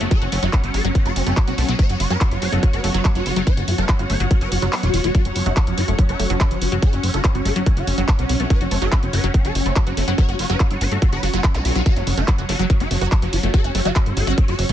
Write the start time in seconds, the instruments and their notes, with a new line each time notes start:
Already playing: synth texture F#3 B3, string section C#4 F#4 C#5 F#5
0.01 analog synth bass F#1, digital synth lead F#3, synth arpeggio sound A3, closed hi-hat
0.11 synth arpeggio sound F#3, digital synth lead A4, kick, closed hi-hat
0.22 analog synth bass F#1, digital synth lead C#4, synth arpeggio sound F#4, closed hi-hat
0.32 analog synth bass F#1, synth arpeggio sound A3, digital synth lead C#4, open hi-hat
0.43 analog synth bass F#1, synth arpeggio sound F#3, digital synth lead F#4, closed hi-hat
0.53 synth arpeggio sound F#3, digital synth lead C#4, kick, clap, closed hi-hat
0.64 analog synth bass G1, digital synth lead C#4, closed hi-hat
0.74 analog synth bass G1, digital synth lead A4, open hi-hat
0.85 analog synth bass G1, synth arpeggio sound F#3, digital synth lead C#4, closed hi-hat
0.95 digital synth lead C#4, kick, closed hi-hat
1.06 analog synth bass F#1, digital synth lead F#4, closed hi-hat
1.16 analog synth bass F#1, digital synth lead C#4, open hi-hat
1.27 analog synth bass F#1, synth arpeggio sound A3, digital synth lead C#4, closed hi-hat
1.37 synth arpeggio sound F#3, kick, clap, closed hi-hat
1.48 analog synth bass B1, digital synth lead C#4, synth arpeggio sound F#4, closed hi-hat
1.58 analog synth bass B1, synth arpeggio sound A3, digital synth lead C#4, open hi-hat
1.69 analog synth bass B1, synth arpeggio sound F#3, digital synth lead C#4, closed hi-hat
1.79 synth arpeggio sound F#3, digital synth lead C#5, kick, closed hi-hat
1.89 analog synth bass F#1, digital synth lead F#4, closed hi-hat
2.00 analog synth bass F#1, digital synth lead F#4, open hi-hat
2.10 analog synth bass F#1, synth arpeggio sound F#3, digital synth lead B4, closed hi-hat
2.21 digital synth lead F#4, kick, clap, closed hi-hat
2.31 analog synth bass F#1, digital synth lead F#4, closed hi-hat
2.42 analog synth bass F#1, digital synth lead C#5, open hi-hat
2.52 analog synth bass F#1, synth arpeggio sound A3, digital synth lead F#4, closed hi-hat
2.63 synth arpeggio sound F#3, digital synth lead F#4, kick, closed hi-hat
2.73 analog synth bass F#1, synth arpeggio sound F#4, digital synth lead B4, closed hi-hat
2.84 analog synth bass F#1, synth arpeggio sound A3, digital synth lead F#4, open hi-hat
2.94 analog synth bass F#1, synth arpeggio sound F#3, digital synth lead F#4, closed hi-hat
3.05 synth arpeggio sound F#3, kick, clap, closed hi-hat
3.15 analog synth bass F#1, digital synth lead F#4, closed hi-hat
3.26 analog synth bass F#1, digital synth lead F#4, open hi-hat
3.36 analog synth bass F#1, synth arpeggio sound F#3, digital synth lead F#4, closed hi-hat
3.47 digital synth lead C#5, kick, closed hi-hat
3.57 analog synth bass F#1, digital synth lead F#4, closed hi-hat
3.68 analog synth bass F#1, digital synth lead F#4, open hi-hat
3.78 analog synth bass F#1, synth arpeggio sound A3, digital synth lead B4, closed hi-hat
3.89 synth arpeggio sound F#3, digital synth lead F#4, kick, clap, closed hi-hat
3.99 analog synth bass G1, digital synth lead F#4, synth arpeggio sound F#4, closed hi-hat
4.10 analog synth bass G1, synth arpeggio sound A3, digital synth lead C#5, open hi-hat
4.20 analog synth bass G1, synth arpeggio sound F#3, digital synth lead F#4, closed hi-hat
4.31 synth arpeggio sound F#3, digital synth lead F#4, kick, closed hi-hat
4.41 analog synth bass F#1, digital synth lead B4, closed hi-hat
4.52 analog synth bass F#1, digital synth lead F#4, open hi-hat
4.62 analog synth bass F#1, synth arpeggio sound F#3, digital synth lead F#4, closed hi-hat
4.73 clap, open hi-hat
4.83 analog synth bass E1, digital synth lead F#4, closed hi-hat
4.94 analog synth bass E1, digital synth lead F#4, open hi-hat
5.04 analog synth bass E1, synth arpeggio sound A3, digital synth lead F#4, closed hi-hat
5.15 synth texture F#3 C#4, synth arpeggio sound F#3, digital synth lead F#4, kick, closed hi-hat
5.25 analog synth bass F#1, digital synth lead F#3, closed hi-hat
5.36 analog synth bass F#1, digital synth lead F#3, open hi-hat
5.46 analog synth bass F#1, synth arpeggio sound F#3, digital synth lead E4, closed hi-hat
5.57 digital synth lead F#3, kick, clap, closed hi-hat
5.67 analog synth bass F#1, digital synth lead F#3, closed hi-hat
5.78 analog synth bass F#1, digital synth lead F#4, open hi-hat
5.88 analog synth bass F#1, digital synth lead F#3, synth arpeggio sound A3, closed hi-hat
5.99 synth arpeggio sound F#3, digital synth lead F#3, kick, closed hi-hat
6.09 analog synth bass F#1, digital synth lead E4, synth arpeggio sound F#4, closed hi-hat
6.20 analog synth bass F#1, digital synth lead F#3, synth arpeggio sound A3, open hi-hat
6.30 analog synth bass F#1, synth arpeggio sound F#3, digital synth lead F#3, closed hi-hat
6.41 kick, clap, closed hi-hat
6.51 analog synth bass F#1, digital synth lead F#3, closed hi-hat
6.61 analog synth bass F#1, digital synth lead F#3, open hi-hat
6.72 analog synth bass F#1, synth arpeggio sound F#3, digital synth lead F#3, closed hi-hat
6.82 digital synth lead A4, kick, closed hi-hat
6.93 analog synth bass F#1, digital synth lead C#4, closed hi-hat
7.03 analog synth bass F#1, digital synth lead C#4, open hi-hat
7.14 analog synth bass F#1, synth arpeggio sound A3, digital synth lead F#4, closed hi-hat
7.24 synth arpeggio sound F#3, digital synth lead C#4, kick, clap, closed hi-hat
7.35 analog synth bass G1, digital synth lead C#4, synth arpeggio sound F#4, closed hi-hat
7.45 analog synth bass G1, synth arpeggio sound A3, digital synth lead A4, open hi-hat
7.56 analog synth bass G1, synth arpeggio sound F#3, digital synth lead C#4, closed hi-hat
7.66 synth arpeggio sound F#3, digital synth lead C#4, kick, closed hi-hat
7.77 analog synth bass F#1, digital synth lead F#4, closed hi-hat
7.87 analog synth bass F#1, digital synth lead C#4, open hi-hat
7.98 analog synth bass F#1, synth arpeggio sound F#3, digital synth lead C#4, closed hi-hat
8.08 kick, clap, closed hi-hat
8.19 analog synth bass B1, digital synth lead C#4, closed hi-hat
8.29 analog synth bass B1, digital synth lead C#4, open hi-hat
8.40 analog synth bass B1, synth arpeggio sound A3, digital synth lead C#4, closed hi-hat
8.50 synth arpeggio sound F#3, digital synth lead B4, kick, closed hi-hat
8.61 analog synth bass F#1, digital synth lead C#4, synth arpeggio sound F#4, closed hi-hat
8.71 analog synth bass F#1, synth arpeggio sound A3, digital synth lead C#4, open hi-hat
8.82 analog synth bass F#1, synth arpeggio sound F#3, digital synth lead A4, closed hi-hat
8.92 digital synth lead C#4, kick, clap, closed hi-hat
9.03 analog synth bass F#1, digital synth lead C#4, closed hi-hat
9.13 analog synth bass F#1, digital synth lead B4, open hi-hat
9.24 analog synth bass F#1, synth arpeggio sound F#3, digital synth lead C#4, closed hi-hat
9.34 digital synth lead C#4, kick, closed hi-hat
9.45 analog synth bass F#1, digital synth lead A4, closed hi-hat
9.55 analog synth bass F#1, digital synth lead C#4, open hi-hat
9.66 analog synth bass F#1, synth arpeggio sound A3, digital synth lead C#4, closed hi-hat
9.76 synth arpeggio sound F#3, kick, clap, closed hi-hat
9.87 analog synth bass F#1, digital synth lead C#4, synth arpeggio sound F#4, closed hi-hat
9.97 analog synth bass F#1, synth arpeggio sound A3, digital synth lead C#4, open hi-hat
10.08 analog synth bass F#1, synth arpeggio sound F#3, digital synth lead C#4, closed hi-hat
10.18 synth arpeggio sound F#3, digital synth lead C#5, kick, closed hi-hat
10.29 analog synth bass F#1, digital synth lead F#4, closed hi-hat
10.39 analog synth bass F#1, digital synth lead F#4, open hi-hat
10.50 analog synth bass F#1, synth arpeggio sound F#3, digital synth lead B4, closed hi-hat
10.60 digital synth lead F#4, kick, clap, closed hi-hat
10.71 analog synth bass G1, digital synth lead F#4, closed hi-hat
10.81 analog synth bass G1, digital synth lead C#5, open hi-hat
10.92 analog synth bass G1, synth arpeggio sound A3, digital synth lead F#4, closed hi-hat
11.02 synth arpeggio sound F#3, digital synth lead F#4, kick, closed hi-hat
11.12 analog synth bass F#1, synth arpeggio sound F#4, digital synth lead B4, closed hi-hat
11.23 analog synth bass F#1, synth arpeggio sound F#3, digital synth lead F#4, open hi-hat
11.33 analog synth bass F#1, synth arpeggio sound F#3, digital synth lead F#4, closed hi-hat
11.44 kick, clap, closed hi-hat
11.54 analog synth bass B1, digital synth lead F#4, closed hi-hat, zap
11.65 analog synth bass B1, digital synth lead F#4, open hi-hat
11.75 analog synth bass B1, synth arpeggio sound F#3, digital synth lead F#4, closed hi-hat
11.86 digital synth lead F#4, synth texture F#4, kick, closed hi-hat
11.96 analog synth bass F#1, digital synth lead F#3, closed hi-hat
12.07 analog synth bass F#1, digital synth lead F#3, open hi-hat
12.17 analog synth bass F#1, synth arpeggio sound A3, digital synth lead E4, closed hi-hat
12.28 digital synth lead F#3, synth arpeggio sound F#3, kick, clap, closed hi-hat
12.38 analog synth bass F#1, digital synth lead F#3, synth arpeggio sound F#4, closed hi-hat
12.49 analog synth bass F#1, synth arpeggio sound A3, digital synth lead F#4, open hi-hat
12.59 analog synth bass F#1, digital synth lead F#3, synth arpeggio sound F#3, closed hi-hat
12.70 digital synth lead F#3, synth arpeggio sound F#3, kick, closed hi-hat
12.80 analog synth bass F#1, digital synth lead E4, closed hi-hat
12.91 analog synth bass F#1, digital synth lead F#3, open hi-hat
13.01 analog synth bass F#1, digital synth lead F#3, synth arpeggio sound F#4, closed hi-hat
13.12 kick, clap, closed hi-hat
13.22 analog synth bass F#1, digital synth lead F#3, closed hi-hat
13.33 analog synth bass F#1, digital synth lead F#3, open hi-hat
13.43 analog synth bass F#1, digital synth lead F#3, synth arpeggio sound A3, closed hi-hat
13.54 synth arpeggio sound F#3, digital synth lead A4, kick, closed hi-hat
13.64 analog synth bass F#1, digital synth lead C#4, synth arpeggio sound F#4, closed hi-hat
13.75 analog synth bass F#1, synth arpeggio sound A3, digital synth lead C#4, open hi-hat
13.85 analog synth bass F#1, synth arpeggio sound F#3, digital synth lead F#4, closed hi-hat
13.96 synth arpeggio sound F#3, digital synth lead C#4, kick, clap, closed hi-hat
14.06 analog synth bass G1, digital synth lead C#4, closed hi-hat
14.17 analog synth bass G1, digital synth lead A4, open hi-hat
14.27 analog synth bass G1, digital synth lead C#4, synth arpeggio sound F#4, closed hi-hat
14.38 digital synth lead C#4, kick, closed hi-hat
14.48 analog synth bass F#1, digital synth lead F#4, closed hi-hat
14.59 analog synth bass F#1, digital synth lead C#4, open hi-hat
14.69 analog synth bass F#1, synth arpeggio sound A3, digital synth lead C#4, closed hi-hat